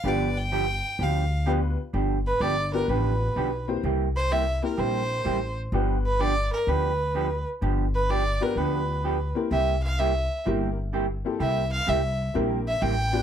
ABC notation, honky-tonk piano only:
X:1
M:4/4
L:1/8
Q:"Swing" 1/4=127
K:Gmix
V:1 name="Honky-tonk piano"
[B,DFGB] z4 z [B,DFGB] z | z3 [B,DFGB]3 z [_B,CEGc] | z3 [_B,CEG_B]3 z2 | [B,DFGB] z6 z |
z3 [B,DFGB]3 z [_B,CEG_B] | z4 [_B,CEG_B] z2 [B,CEGA] | z4 [_B,CEG_B] z2 [=B,DFG=B] |]